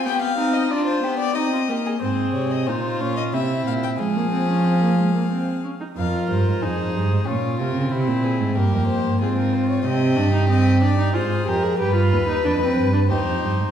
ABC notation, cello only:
X:1
M:3/4
L:1/16
Q:1/4=92
K:Cm
V:1 name="Cello" clef=bass
z12 | [K:Fm] A,,2 C,2 B,,2 B,,2 C,2 B,,2 | F,8- F,2 z2 | F,,2 G,, A,, F,,2 G,, A,, B,,2 C, D, |
C, B,,2 A,, G,, F,,2 G,, A,,4 | C,2 G,,6 A,,2 F,,2 | G,,2 E,,2 F,,2 G,,2 E,, F,, G,, A,, |]